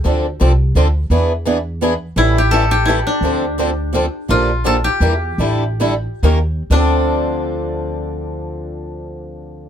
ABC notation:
X:1
M:3/4
L:1/16
Q:"Swing" 1/4=170
K:Dm
V:1 name="Koto"
z12 | z12 | E2 G2 A2 G2 E2 D2- | D8 z4 |
F4 A2 G6- | G8- G2 z2 | D12- | D12 |]
V:2 name="Steel-string acoustic guitar"
[D,F,CDA]2 z2 [D,F,CDA] z3 [D,F,CDA] z3 | [E,=B,D^G=B]2 z2 [E,B,DGB] z3 [E,B,DGB] z3 | [E,G,^CEA]2 z2 [E,G,CEA] z3 [E,G,CEA] z3 | [D,F,CDA]2 z2 [D,F,CDA] z3 [D,F,CDA] z3 |
[D,F,B,DG]2 z2 [D,F,B,DG] z3 [E,G,DEB] z3 | [D,G,DEA]2 z2 [D,G,DEA] z3 [_E,B,_DGB] z3 | [D,F,CDA]12- | [D,F,CDA]12 |]
V:3 name="Steel-string acoustic guitar"
[D,F,CDA]2 z2 [D,F,CDA] z3 [D,F,CDA] z3 | [E,=B,D^G]2 z2 [E,B,DG] z3 [E,B,DG] z3 | [E,G,^CEA]2 z2 [E,G,CEA] z3 [E,G,CEA] z3 | [D,F,CDA]2 z2 [D,F,CDA] z3 [D,F,CDA] z3 |
[D,F,B,DG]2 z2 [D,F,B,DG] z3 [E,B,DG] z3 | [D,G,DEA]2 z2 [D,G,DEA] z3 [_E,B,_DGB] z3 | [D,F,CDA]12- | [D,F,CDA]12 |]
V:4 name="Upright bass" clef=bass
D,,4 C,,4 D,,4 | E,,12 | A,,,12 | D,,12 |
B,,,8 E,,4 | A,,,8 _E,,4 | D,,12- | D,,12 |]